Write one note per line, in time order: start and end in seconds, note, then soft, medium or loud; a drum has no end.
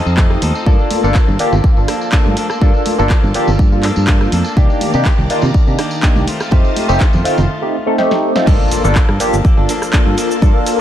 0.00 0.16 F3 medium
0.00 0.17 C4 medium
0.00 0.17 D#4 medium
0.00 0.64 F4 medium
0.00 0.17 A4 medium
0.00 0.64 D#5 medium
0.00 4.53 A5 medium
0.06 0.36 F2 medium
0.06 tambourine medium
0.17 0.40 F3 medium
0.17 0.39 A3 medium
0.17 0.39 C4 medium
0.17 0.41 C4 medium
0.17 0.40 D#4 medium
0.17 0.41 D#4 medium
0.17 0.40 G4 medium
0.17 0.42 A4 loud
0.17 kick loud
0.17 clap loud
0.17 tambourine medium
0.30 cross-stick medium
0.30 tambourine soft
0.42 0.51 D#2 loud
0.42 0.55 F3 medium
0.42 0.55 C4 medium
0.42 0.54 D#4 medium
0.42 0.53 A4 medium
0.42 open hi-hat medium
0.42 high conga medium
0.55 0.66 C4 medium
0.55 0.67 D#4 medium
0.55 0.66 A4 medium
0.55 tambourine medium
0.66 0.75 G2 loud
0.66 0.79 F3 medium
0.66 1.01 A#3 medium
0.66 4.53 A#3 medium
0.66 0.80 A#3 medium
0.66 1.01 D4 medium
0.66 0.79 D4 loud
0.66 4.53 F4 medium
0.66 1.01 F4 medium
0.66 1.01 A4 loud
0.66 0.77 A4 medium
0.66 kick loud
0.66 tambourine medium
0.79 1.03 A#3 soft
0.79 1.03 D4 medium
0.79 1.02 A4 medium
0.79 tambourine soft
0.91 open hi-hat loud
0.91 high conga medium
1.03 1.11 G1 loud
1.03 1.17 A#3 medium
1.03 1.14 A#3 medium
1.03 1.14 D4 medium
1.03 1.17 D4 medium
1.03 1.17 F4 medium
1.03 1.15 A4 medium
1.03 1.17 A4 loud
1.03 tambourine medium
1.14 1.38 F3 medium
1.14 1.38 A#3 medium
1.14 1.39 D4 loud
1.14 1.40 A4 loud
1.14 kick loud
1.14 clap loud
1.14 tambourine medium
1.28 1.36 G2 loud
1.28 tambourine soft
1.28 low conga medium
1.39 1.87 F3 medium
1.39 1.54 A#3 medium
1.39 1.88 A#3 medium
1.39 1.54 D4 medium
1.39 1.89 D4 medium
1.39 1.54 F4 medium
1.39 1.54 G4 loud
1.39 1.89 A4 medium
1.39 muted fingered electric bass stroke soft
1.39 open hi-hat medium
1.52 1.60 G1 medium
1.52 tambourine medium
1.52 low conga medium
1.64 kick loud
1.64 tambourine medium
1.77 1.85 G1 medium
1.77 1.90 A#3 medium
1.77 1.90 D4 medium
1.77 1.90 F4 medium
1.77 1.90 A4 medium
1.77 tambourine soft
1.88 2.11 F3 medium
1.88 2.12 A#3 medium
1.88 2.12 D4 medium
1.88 2.12 A4 medium
1.88 cross-stick medium
1.88 open hi-hat loud
2.01 tambourine medium
2.12 2.35 F3 medium
2.12 2.35 A#3 medium
2.12 2.36 A#3 medium
2.12 2.35 D4 medium
2.12 2.37 D4 loud
2.12 2.35 F4 medium
2.12 2.35 A4 medium
2.12 2.37 A4 loud
2.12 kick loud
2.12 clap loud
2.12 tambourine medium
2.26 2.33 G2 medium
2.26 tambourine soft
2.26 high conga medium
2.36 2.50 F3 medium
2.36 2.50 A#3 medium
2.36 2.49 D4 medium
2.36 2.48 A4 medium
2.36 open hi-hat medium
2.50 2.60 A#3 soft
2.50 2.61 D4 medium
2.50 2.61 A4 medium
2.50 cross-stick medium
2.50 tambourine medium
2.61 2.70 G2 loud
2.61 2.74 F3 medium
2.61 2.96 A#3 medium
2.61 2.75 A#3 medium
2.61 2.96 D4 medium
2.61 2.74 D4 medium
2.61 2.96 F4 medium
2.61 2.96 A4 loud
2.61 2.73 A4 loud
2.61 kick loud
2.61 tambourine medium
2.74 2.99 A#3 soft
2.74 2.98 D4 soft
2.74 2.97 A4 medium
2.74 tambourine soft
2.86 open hi-hat loud
2.86 high conga medium
2.98 3.07 G1 loud
2.98 3.12 A#3 medium
2.98 3.09 A#3 medium
2.98 3.12 D4 medium
2.98 3.10 D4 medium
2.98 3.12 F4 medium
2.98 3.10 A4 medium
2.98 3.12 A4 loud
2.98 tambourine medium
3.10 3.33 F3 medium
3.10 3.34 A#3 loud
3.10 3.34 D4 loud
3.10 3.35 A4 medium
3.10 kick loud
3.10 clap loud
3.10 tambourine medium
3.23 3.31 G2 loud
3.23 tambourine soft
3.23 low conga medium
3.34 3.82 F3 medium
3.34 3.49 A#3 medium
3.34 3.83 A#3 medium
3.34 3.49 D4 medium
3.34 3.84 D4 medium
3.34 3.49 F4 medium
3.34 3.49 G4 loud
3.34 3.84 A4 medium
3.34 muted fingered electric bass stroke soft
3.34 open hi-hat medium
3.47 3.56 G1 medium
3.47 tambourine medium
3.47 low conga medium
3.59 3.90 G2 loud
3.59 kick loud
3.72 3.85 A#3 medium
3.72 3.85 D4 medium
3.72 3.85 F4 medium
3.72 3.85 A4 medium
3.72 tambourine soft
3.83 4.06 F3 medium
3.83 4.07 A#3 medium
3.83 4.07 D4 medium
3.83 4.07 A4 medium
3.83 clap medium
3.83 open hi-hat loud
3.96 4.26 G2 medium
3.96 tambourine medium
4.07 4.30 F3 medium
4.07 4.31 A#3 medium
4.07 4.30 A#3 medium
4.07 4.30 D4 medium
4.07 4.32 D4 loud
4.07 4.30 F4 medium
4.07 4.30 A4 medium
4.07 4.32 A4 loud
4.07 kick loud
4.07 clap loud
4.21 cross-stick medium
4.21 tambourine soft
4.32 4.41 F2 loud
4.32 4.45 F3 medium
4.32 4.45 A#3 medium
4.32 4.44 D4 medium
4.32 4.43 A4 medium
4.32 open hi-hat medium
4.32 high conga medium
4.44 4.56 A#3 soft
4.44 4.56 D4 medium
4.44 4.56 A4 medium
4.44 tambourine medium
4.56 4.65 C2 loud
4.56 4.69 D#3 medium
4.56 6.26 D#3 medium
4.56 4.91 D#3 medium
4.56 4.91 A#3 medium
4.56 4.69 A#3 medium
4.56 4.91 D4 medium
4.56 4.69 D4 medium
4.56 4.91 G4 loud
4.56 4.68 G4 medium
4.56 6.26 D5 medium
4.56 6.26 A#5 medium
4.56 kick loud
4.56 tambourine medium
4.69 4.94 A#3 soft
4.69 4.93 D4 medium
4.69 4.92 G4 medium
4.69 tambourine soft
4.81 open hi-hat loud
4.81 high conga medium
4.93 5.02 C3 loud
4.93 5.07 A#3 medium
4.93 5.04 A#3 medium
4.93 5.07 D4 medium
4.93 5.05 D4 medium
4.93 5.07 D#4 medium
4.93 5.05 G4 medium
4.93 5.07 G4 loud
4.93 tambourine medium
5.05 5.28 D#3 medium
5.05 5.29 A#3 medium
5.05 5.29 D4 loud
5.05 5.30 G4 loud
5.05 kick loud
5.05 clap loud
5.05 tambourine medium
5.18 5.26 C2 loud
5.18 tambourine soft
5.18 low conga medium
5.29 5.78 D#3 medium
5.29 5.44 A#3 medium
5.29 5.77 A#3 medium
5.29 5.44 D4 medium
5.29 5.78 D4 medium
5.29 5.44 D#4 medium
5.29 5.45 F4 loud
5.29 5.79 G4 medium
5.29 muted fingered electric bass stroke soft
5.29 open hi-hat medium
5.42 5.50 C3 medium
5.42 tambourine medium
5.42 low conga medium
5.54 muted fingered electric bass stroke soft
5.54 kick loud
5.54 tambourine medium
5.67 5.75 C3 medium
5.67 5.80 A#3 medium
5.67 5.80 D4 medium
5.67 5.80 D#4 medium
5.67 5.80 G4 medium
5.67 tambourine soft
5.78 6.01 D#3 medium
5.78 6.02 A#3 medium
5.78 6.02 D4 medium
5.78 6.03 G4 medium
5.78 cross-stick medium
5.78 open hi-hat loud
5.91 tambourine medium
6.03 6.26 D#3 medium
6.03 6.25 A#3 medium
6.03 6.27 A#3 medium
6.03 6.25 D4 medium
6.03 6.28 D4 medium
6.03 6.25 D#4 medium
6.03 6.25 G4 medium
6.03 6.28 G4 loud
6.03 kick loud
6.03 clap loud
6.03 tambourine medium
6.15 6.24 C2 medium
6.15 tambourine soft
6.15 high conga medium
6.27 6.40 D#3 medium
6.27 6.40 A3 medium
6.27 6.40 C4 medium
6.27 7.48 F4 medium
6.27 6.39 F4 medium
6.27 7.48 D#5 medium
6.27 7.48 A5 medium
6.27 open hi-hat medium
6.40 6.51 A3 medium
6.40 6.51 C4 medium
6.40 6.51 F4 medium
6.40 cross-stick medium
6.40 tambourine medium
6.51 6.61 F2 loud
6.51 6.65 D#3 medium
6.51 6.86 A3 medium
6.51 6.65 A3 medium
6.51 6.86 C4 medium
6.51 6.64 C4 loud
6.51 6.86 D#4 medium
6.51 6.63 F4 loud
6.51 6.86 G4 loud
6.51 kick loud
6.51 tambourine medium
6.64 6.89 A3 soft
6.64 6.89 C4 medium
6.64 6.87 F4 medium
6.64 tambourine soft
6.76 open hi-hat loud
6.76 high conga medium
6.88 6.97 F1 loud
6.88 7.02 A3 medium
6.88 7.00 A3 medium
6.88 7.02 C4 medium
6.88 7.00 C4 medium
6.88 7.02 D#4 medium
6.88 7.00 F4 medium
6.88 7.02 G4 loud
6.88 tambourine medium
7.00 7.23 D#3 medium
7.00 7.24 A3 loud
7.00 7.25 C4 medium
7.00 7.25 F4 loud
7.00 kick loud
7.00 clap loud
7.00 tambourine medium
7.13 7.21 F2 loud
7.13 tambourine soft
7.13 low conga medium
7.24 7.49 D#3 medium
7.24 7.39 A3 loud
7.24 8.00 A3 medium
7.24 7.39 C4 medium
7.24 7.50 C4 medium
7.24 7.39 D#4 medium
7.24 7.39 F4 loud
7.24 8.00 F4 medium
7.24 muted fingered electric bass stroke soft
7.24 open hi-hat medium
7.38 7.46 F1 medium
7.38 tambourine medium
7.38 low conga loud
7.62 7.75 A3 medium
7.62 7.75 C4 medium
7.62 7.75 D#4 medium
7.62 7.75 G4 medium
7.86 7.95 A3 medium
7.86 7.95 C4 medium
7.86 7.96 D#4 medium
7.86 7.96 A4 medium
7.98 8.32 A3 medium
7.98 8.32 C4 medium
7.98 8.33 D#4 medium
7.98 8.33 G4 loud
7.98 snare medium
8.11 snare medium
8.35 8.45 A3 medium
8.35 8.45 C4 medium
8.35 8.46 D#4 medium
8.35 8.46 F4 loud
8.35 snare medium
8.46 8.56 G2 loud
8.46 8.69 F3 medium
8.46 8.81 A#3 medium
8.46 8.70 A#3 medium
8.46 10.81 A#3 medium
8.46 8.81 D4 medium
8.46 8.71 D4 loud
8.46 10.81 F4 medium
8.46 8.81 F4 medium
8.46 8.82 A4 loud
8.46 8.71 A4 loud
8.46 10.81 A5 medium
8.46 kick loud
8.46 crash loud
8.46 impact medium
8.46 shaker soft
8.71 8.84 F3 medium
8.71 8.84 A#3 medium
8.71 8.83 D4 medium
8.71 8.82 A4 medium
8.71 open hi-hat loud
8.71 shaker medium
8.84 8.92 G1 loud
8.84 8.97 A#3 medium
8.84 8.95 A#3 medium
8.84 8.97 D4 medium
8.84 8.95 D4 medium
8.84 8.97 F4 medium
8.84 8.95 A4 medium
8.84 8.98 A4 loud
8.84 shaker soft
8.95 9.43 F3 medium
8.95 9.44 A#3 medium
8.95 9.45 D4 medium
8.95 9.45 A4 loud
8.95 kick loud
8.95 clap loud
8.95 shaker soft
9.09 9.16 G2 loud
9.09 cross-stick medium
9.20 9.34 A#3 loud
9.20 9.34 D4 medium
9.20 9.35 F4 medium
9.20 9.35 G4 loud
9.20 muted fingered electric bass stroke soft
9.20 open hi-hat loud
9.20 shaker medium
9.33 9.41 G1 medium
9.33 shaker soft
9.44 9.57 F3 medium
9.44 9.58 A#3 medium
9.44 9.57 D4 medium
9.44 9.56 A4 medium
9.44 kick loud
9.44 shaker soft
9.57 9.65 G1 medium
9.57 9.70 A#3 medium
9.57 9.68 A#3 soft
9.57 9.70 D4 medium
9.57 9.69 D4 medium
9.57 9.70 F4 medium
9.57 9.69 A4 medium
9.57 9.71 A4 medium
9.69 9.92 F3 medium
9.69 9.92 A#3 medium
9.69 9.93 D4 medium
9.69 9.93 A4 medium
9.69 open hi-hat loud
9.69 shaker medium
9.82 cross-stick medium
9.82 shaker soft
9.93 10.16 F3 loud
9.93 10.15 A#3 medium
9.93 10.17 A#3 medium
9.93 10.15 D4 medium
9.93 10.18 D4 loud
9.93 10.15 F4 medium
9.93 10.15 A4 medium
9.93 10.18 A4 loud
9.93 kick loud
9.93 clap loud
9.93 shaker soft
10.06 10.14 G2 medium
10.18 10.31 F3 medium
10.18 10.31 A#3 medium
10.18 10.30 D4 medium
10.18 10.29 A4 medium
10.18 open hi-hat medium
10.18 shaker medium
10.30 10.41 A#3 medium
10.30 10.41 D4 medium
10.30 10.42 A4 medium
10.30 shaker soft
10.42 10.51 G2 loud
10.42 10.65 F3 medium
10.42 10.76 A#3 medium
10.42 10.65 A#3 medium
10.42 10.76 D4 medium
10.42 10.66 D4 medium
10.42 10.76 F4 medium
10.42 10.77 A4 loud
10.42 10.67 A4 loud
10.42 kick loud
10.42 shaker soft
10.66 10.79 F3 medium
10.66 10.79 A#3 medium
10.66 10.78 D4 medium
10.66 10.78 A4 medium
10.66 open hi-hat loud
10.66 shaker medium